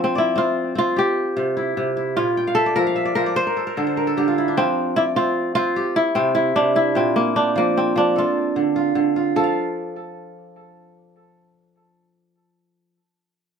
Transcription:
0.00 1.01 F3 medium
0.00 1.84 C4 medium
0.00 1.07 F4 medium
0.15 0.44 E4 medium
0.15 1.26 D5 medium
0.36 0.75 C4 medium
0.36 0.78 F4 medium
0.75 2.55 C4 medium
0.75 2.16 F4 loud
0.96 2.38 G4 medium
0.96 2.40 G4 medium
1.37 1.76 C3 medium
1.57 1.96 E4 medium
1.77 2.22 C3 medium
1.97 2.53 E4 medium
2.17 3.42 A#2 medium
2.17 3.68 F4 medium
2.37 3.30 G5 medium
2.47 2.83 F5 medium
2.55 2.82 A4 medium
2.55 2.76 E5 medium
2.66 3.05 D5 medium
2.76 3.15 F3 medium
2.76 3.15 A#4 medium
2.76 2.95 E5 medium
2.87 3.87 F5 medium
2.96 3.22 E5 medium
3.05 3.26 D5 medium
3.15 3.42 F3 medium
3.15 4.43 A#4 medium
3.15 3.36 C5 medium
3.26 4.37 D5 medium
3.36 4.55 C5 loud
3.36 3.86 C5 medium
3.47 3.66 A#4 medium
3.57 3.77 A4 medium
3.67 3.97 A#4 medium
3.77 4.16 D3 medium
3.77 4.03 A4 medium
3.87 5.06 C5 medium
3.97 5.24 A#4 medium
4.07 5.39 A4 medium
4.17 4.61 D3 medium
4.17 5.58 G4 medium
4.28 5.79 F4 medium
4.38 4.64 E4 medium
4.48 6.16 D4 medium
4.57 5.81 F3 medium
4.57 6.15 C4 loud
4.96 5.02 E4 medium
4.96 6.08 D5 medium
5.16 5.56 C4 medium
5.16 5.55 F4 loud
5.55 7.37 C4 medium
5.55 6.02 F4 loud
5.76 7.17 G4 medium
5.96 6.34 E4 loud
6.15 6.55 C3 medium
6.15 6.96 C4 medium
6.35 6.76 E4 loud
6.35 6.75 E4 medium
6.56 7.01 C3 medium
6.56 7.36 D4 medium
6.75 7.62 E4 medium
6.75 8.24 E4 medium
6.95 8.21 A#2 medium
6.95 7.77 C4 medium
7.16 7.57 A#3 medium
7.36 7.97 D4 medium
7.36 8.29 G5 medium
7.56 7.95 F3 medium
7.56 9.42 A#3 medium
7.77 9.57 C4 medium
7.96 8.21 F3 medium
7.96 9.65 D4 medium
8.16 9.70 F4 medium
8.16 9.48 A4 medium
8.56 8.94 D3 medium
8.76 9.16 F4 medium
8.95 9.40 D3 medium
9.16 9.39 F4 medium
9.36 12.98 F3 medium
9.36 13.02 F4 medium
9.36 12.94 A4 medium
9.44 13.06 F5 medium

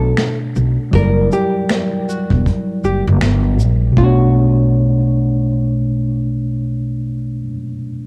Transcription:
0.00 0.12 B1 medium
0.00 0.88 B2 medium
0.00 0.89 A3 medium
0.00 0.90 D4 medium
0.00 0.38 A4 medium
0.00 0.92 C#5 medium
0.17 finger snap medium
0.17 snare loud
0.17 closed hi-hat medium
0.56 0.76 B1 medium
0.56 shaker medium
0.91 1.26 F#1 loud
0.91 3.92 F#3 medium
0.91 3.94 G3 medium
0.91 3.93 E4 medium
0.91 1.28 A#4 medium
0.91 kick loud
0.91 closed hi-hat medium
0.96 1.03 A4 soft
0.96 3.95 D5 medium
1.03 3.98 A#4 medium
1.32 2.09 G4 medium
1.32 closed hi-hat soft
1.32 shaker medium
1.69 finger snap loud
1.69 snare loud
1.69 closed hi-hat medium
2.09 2.42 F#4 medium
2.09 shaker medium
2.30 2.43 E1 medium
2.30 kick medium
2.46 kick medium
2.46 closed hi-hat medium
2.84 3.04 F#1 medium
2.84 3.05 G4 medium
2.84 shaker soft
3.07 3.20 F#1 loud
3.21 3.60 G1 medium
3.21 finger snap medium
3.21 snare loud
3.21 closed hi-hat medium
3.60 3.92 A#1 medium
3.60 shaker soft
3.92 7.39 B2 medium
3.97 7.45 B1 medium
3.97 7.44 A3 medium
3.97 6.21 F#4 medium
3.97 kick loud
4.01 7.48 D4 medium
4.06 7.53 C#5 medium

